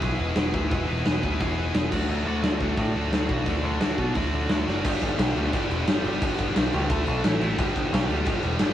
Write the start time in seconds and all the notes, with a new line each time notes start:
0.01 B1 E3 B3 E4 G#4 B4, kick, open hi-hat
0.18 E1 E3 B3 E4 G#4 B4
0.35 E1 E3 B3 E4 G#4 B4, snare, open hi-hat
0.53 D2 E3 B3 E4 G#4 B4, kick
0.69 E1 E3 B3 E4 G#4 B4, kick, open hi-hat
0.87 E1 E3 B3 E4 G#4 B4
1.04 E1 E3 B3 E4 G#4 B4, snare, open hi-hat
1.22 D2 E3 B3 E4 G#4 B4, kick
1.40 E1 E3 B3 E4 G#4 B4, kick, open hi-hat
1.57 E3 B3 E4 G#4 B4
1.74 E1 E3 B3 E4 G#4 B4, snare
1.90 D2 D3 F#3 A3 D4 F#4 D5, kick, crash
2.08 D2 D3 F#3 A3 D4 F#4 D5
2.25 D2 D3 F#3 A3 D4 F#4 D5
2.42 D2 D3 F#3 A3 D4 F#4 D5, snare, open hi-hat
2.60 D2 D3 F#3 A3 D4 F#4 D5, kick
2.77 A2 D3 F#3 A3 D4 F#4 D5, kick, open hi-hat
2.94 D2 D3 F#3 A3 D4 F#4 D5
3.11 D2 D3 F#3 A3 D4 F#4 D5, snare, open hi-hat
3.28 B1 D3 F#3 A3 D4 F#4 D5, kick
3.46 D2 D3 F#3 A3 D4 F#4 D5, kick, open hi-hat
3.63 D2 D3 F#3 A3 D4 F#4 D5
3.79 D2 D3 F#3 A3 D4 F#4 D5, snare, open hi-hat
3.98 B2 D3 F#3 A3 D4 F#4 D5, kick
4.14 D2 D3 F#3 A3 D4 F#4 D5, kick, open hi-hat
4.32 D3 F#3 A3 D4 F#4 D5
4.49 D2 D3 F#3 A3 D4 F#4 D5, snare, open hi-hat
4.66 F#1 D3 F#3 A3 D4 F#4 D5, snare
4.83 G1 G2 D3 G3 B3 D4 G4, kick, crash
5.02 G1, kick, crash
5.17 B1 G2 D3 G3 B3 D4 G4, snare, crash
5.35 D2 G2 D3 G3 B3 D4 G4, crash
5.53 G1 G2 D3 G3 B3 D4 G4, kick, crash
5.70 E1, crash
5.87 G1 G2 D3 G3 B3 D4 G4, snare, crash
6.04 G1 G2 D3 G3 B3 D4 G4, crash
6.21 G1 G2 D3 G3 B3 D4 G4, kick, crash
6.39 G1, kick, crash
6.55 B1 G2 D3 G3 B3 D4 G4, snare, crash
6.73 C#2 G2 D3 G3 B3 D4 G4, crash
6.90 D2 D3 A3 D4 A4, kick, crash
7.07 B1, crash
7.24 A1 A2 E3 A3 E4, snare, crash
7.41 A1 A2 E3 A3 E4, crash
7.57 G1 G2 D3 G3 B3 D4 G4, kick, crash
7.76 G1, kick, crash
7.92 B1 G2 D3 G3 B3 D4 G4, snare, crash
8.09 D2 G2 D3 G3 B3 D4 G4, crash
8.25 G1 G2 D3 G3 B3 D4 G4, kick, crash
8.43 E1, crash
8.59 G1 G2 D3 G3 B3 D4 G4, snare, crash